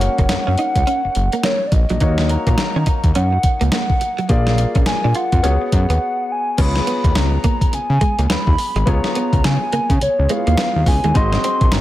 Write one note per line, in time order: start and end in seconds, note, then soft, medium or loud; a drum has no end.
0.00 1.97 A#3 medium
0.00 1.97 C#4 medium
0.00 1.98 F#4 medium
0.00 1.98 C#5 medium
0.00 1.46 F#5 loud
0.00 muted clean electric guitar stroke soft
0.00 closed hi-hat medium
0.18 0.27 F#1 medium
0.18 0.28 A#3 medium
0.18 kick loud
0.18 closed hi-hat soft
0.29 0.37 F#2 medium
0.29 muted clean electric guitar stroke soft
0.29 snare loud
0.29 closed hi-hat medium
0.47 0.56 F#2 medium
0.47 0.56 C#4 medium
0.58 0.72 D#4 medium
0.58 closed hi-hat medium
0.75 0.84 C#2 medium
0.75 kick medium
0.75 closed hi-hat medium
0.87 1.01 C#4 medium
0.87 closed hi-hat medium
1.05 1.09 F#1 medium
1.05 muted clean electric guitar stroke soft
1.15 1.30 F#1 medium
1.15 closed hi-hat medium
1.32 1.42 A#3 medium
1.32 closed hi-hat medium
1.43 1.58 A#3 medium
1.43 1.69 C#5 medium
1.43 snare loud
1.43 closed hi-hat medium
1.67 1.75 D5 medium
1.72 1.86 A#1 medium
1.72 2.30 D#5 loud
1.72 muted clean electric guitar stroke soft
1.72 kick medium
1.72 closed hi-hat medium
1.89 1.99 A#1 medium
1.89 1.99 F#3 medium
1.89 closed hi-hat soft
2.00 2.37 D#2 loud
2.00 4.25 A#3 medium
2.00 4.26 D#4 medium
2.00 2.15 D#4 medium
2.00 4.26 F#4 medium
2.00 4.27 C#5 medium
2.00 kick loud
2.00 closed hi-hat medium
2.18 snare medium
2.29 3.12 A#5 loud
2.29 muted clean electric guitar stroke soft
2.29 closed hi-hat medium
2.47 2.56 A#2 medium
2.47 2.56 A#3 medium
2.47 kick loud
2.47 closed hi-hat medium
2.58 2.65 D#3 soft
2.58 muted clean electric guitar stroke soft
2.58 snare loud
2.58 closed hi-hat medium
2.76 2.85 D#3 medium
2.76 2.85 C#4 medium
2.86 3.01 D#4 medium
2.86 kick loud
2.86 closed hi-hat medium
3.04 3.13 D#2 medium
3.04 kick medium
3.04 closed hi-hat medium
3.15 3.38 F#2 loud
3.15 3.29 C#4 medium
3.15 3.69 F#5 loud
3.15 closed hi-hat medium
3.33 muted clean electric guitar stroke soft
3.43 kick medium
3.43 closed hi-hat medium
3.61 3.70 C#2 medium
3.61 3.70 A#3 medium
3.61 closed hi-hat medium
3.72 3.86 A#3 medium
3.72 4.31 F#5 medium
3.72 snare loud
3.72 closed hi-hat medium
3.90 kick medium
4.01 muted clean electric guitar stroke soft
4.01 closed hi-hat medium
4.18 4.28 F#3 medium
4.18 closed hi-hat soft
4.29 4.66 A#1 loud
4.29 5.41 A#3 medium
4.29 4.43 A#3 medium
4.29 5.42 F4 medium
4.29 5.42 G#4 medium
4.29 5.42 D5 medium
4.29 4.86 F5 loud
4.29 kick loud
4.29 closed hi-hat medium
4.47 snare medium
4.58 muted clean electric guitar stroke soft
4.58 closed hi-hat medium
4.75 4.84 A#1 medium
4.75 4.85 C#4 medium
4.75 kick loud
4.75 closed hi-hat medium
4.86 4.94 A#2 soft
4.86 5.13 G#5 loud
4.86 muted clean electric guitar stroke soft
4.86 snare loud
4.86 closed hi-hat medium
5.04 5.13 A#2 medium
5.04 5.13 D4 medium
5.15 5.29 F4 medium
5.15 5.69 F#5 medium
5.15 closed hi-hat medium
5.32 5.42 F2 medium
5.32 kick medium
5.32 closed hi-hat medium
5.43 5.58 C#2 loud
5.43 6.55 B3 medium
5.43 5.58 C#4 medium
5.43 6.56 F#4 medium
5.43 6.56 G#4 medium
5.43 6.57 C#5 medium
5.43 closed hi-hat medium
5.62 muted clean electric guitar stroke soft
5.72 5.86 F#2 loud
5.72 6.33 F#5 loud
5.72 kick medium
5.72 closed hi-hat medium
5.90 5.99 D#2 medium
5.90 5.99 B3 medium
5.90 closed hi-hat medium
6.32 6.59 G#5 medium
6.58 6.81 C#2 loud
6.58 8.83 B3 medium
6.58 6.72 C#4 medium
6.58 8.83 F4 medium
6.58 8.83 G#4 medium
6.58 8.84 C#5 medium
6.58 7.19 B5 loud
6.58 kick loud
6.58 closed hi-hat medium
6.58 crash medium
6.76 snare medium
6.87 7.01 B3 medium
6.87 closed hi-hat medium
7.04 7.13 D#2 medium
7.04 muted clean electric guitar stroke soft
7.04 kick loud
7.04 closed hi-hat soft
7.15 7.38 C#2 loud
7.15 7.76 A#5 loud
7.15 snare loud
7.15 closed hi-hat medium
7.44 7.58 A#3 medium
7.44 kick medium
7.44 closed hi-hat medium
7.61 kick loud
7.61 closed hi-hat medium
7.73 7.80 C#3 soft
7.73 8.31 G#5 loud
7.73 muted clean electric guitar stroke soft
7.73 closed hi-hat medium
7.90 7.99 C#3 loud
8.01 8.15 G#3 medium
8.01 kick medium
8.01 closed hi-hat medium
8.19 8.27 C#2 medium
8.19 8.28 A#3 medium
8.19 closed hi-hat medium
8.30 8.37 D#2 soft
8.30 8.44 B3 medium
8.30 8.90 B5 loud
8.30 snare loud
8.30 closed hi-hat medium
8.47 8.56 D#2 loud
8.47 kick medium
8.58 muted clean electric guitar stroke soft
8.58 open hi-hat medium
8.75 8.84 G#1 medium
8.75 8.85 G#3 medium
8.75 closed hi-hat soft
8.86 9.01 C#2 loud
8.86 10.26 B3 medium
8.86 9.01 C#4 medium
8.86 10.27 F4 medium
8.86 10.27 G#4 medium
8.86 10.27 C#5 medium
8.86 9.47 A#5 loud
8.86 kick loud
8.86 closed hi-hat medium
9.04 snare medium
9.15 9.30 B3 medium
9.15 closed hi-hat medium
9.33 9.42 C#2 medium
9.33 muted clean electric guitar stroke soft
9.33 kick loud
9.33 closed hi-hat medium
9.44 9.58 C#3 loud
9.44 10.02 G#5 loud
9.44 snare loud
9.44 closed hi-hat medium
9.73 9.80 C#3 soft
9.73 9.87 A#3 medium
9.73 closed hi-hat medium
9.90 9.99 C#3 loud
9.90 kick medium
9.90 closed hi-hat medium
10.01 10.09 C#2 soft
10.01 10.33 C#5 medium
10.01 muted clean electric guitar stroke soft
10.01 closed hi-hat medium
10.19 10.28 C#2 medium
10.29 10.44 G#3 medium
10.29 11.15 B3 medium
10.29 10.38 E4 soft
10.29 11.14 G#4 soft
10.29 11.16 C#5 medium
10.29 10.90 F5 loud
10.29 closed hi-hat medium
10.36 11.19 F4 soft
10.47 10.56 D#2 loud
10.47 10.56 A#3 medium
10.47 closed hi-hat medium
10.57 10.72 B3 medium
10.57 snare loud
10.57 closed hi-hat medium
10.76 10.85 D#2 loud
10.86 11.00 C#2 medium
10.86 11.18 G#5 loud
10.86 muted clean electric guitar stroke soft
10.86 kick loud
10.86 open hi-hat medium
11.04 11.13 D#2 medium
11.04 11.13 G#3 medium
11.04 closed hi-hat soft
11.14 11.38 G#1 loud
11.14 11.81 C4 medium
11.14 11.29 D#4 medium
11.14 11.81 F#4 medium
11.14 11.81 G#4 medium
11.14 11.81 D#5 medium
11.14 11.75 C6 loud
11.14 kick loud
11.14 closed hi-hat medium
11.32 snare medium
11.44 11.58 C4 medium
11.44 closed hi-hat medium
11.61 11.70 A#1 medium
11.61 muted clean electric guitar stroke soft
11.61 kick loud
11.61 closed hi-hat soft
11.72 11.81 G#1 loud
11.72 11.81 A#5 loud
11.72 snare loud
11.72 closed hi-hat medium